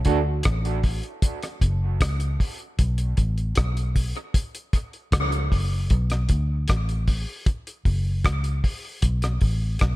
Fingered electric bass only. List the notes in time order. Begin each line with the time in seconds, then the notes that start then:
0.06 D2
0.46 A1
1.62 F#1
2.01 C#2
2.79 B1
3.18 A1
3.58 B1
5.13 C#2
5.52 F#1
5.91 B1
6.30 D2
6.70 A1
7.86 F#1
8.25 C#2
9.03 B1
9.42 A1
9.82 B1